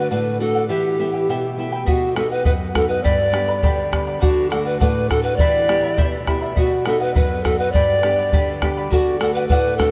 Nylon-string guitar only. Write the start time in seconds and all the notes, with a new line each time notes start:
Already playing: A3 D4 F#4
0.11 A2
0.40 A3 D4 F#4
0.69 E3
0.99 B3 E4 G4
1.29 B2
1.57 B3 E4 G4
1.87 B2
2.17 B3 D#4 F#4
2.46 F#2
2.74 B3 D#4 F#4
3.04 G2
3.33 B3 D4 G4
3.62 D3
3.92 B3 D4 G4
4.22 D3
4.51 A3 D4 F#4
4.80 A2
5.10 A3 D4 F#4
5.40 E3
5.69 B3 E4 G4
5.98 B2
6.28 B3 E4 G4
6.57 B2
6.86 B3 D#4 F#4
7.16 F#2
7.45 B3 D#4 F#4
7.74 G2
8.03 B3 D4 G4
8.33 D3
8.62 B3 D4 G4
8.92 D3
9.20 A3 D4 F#4
9.50 A2
9.79 A3 D4 F#4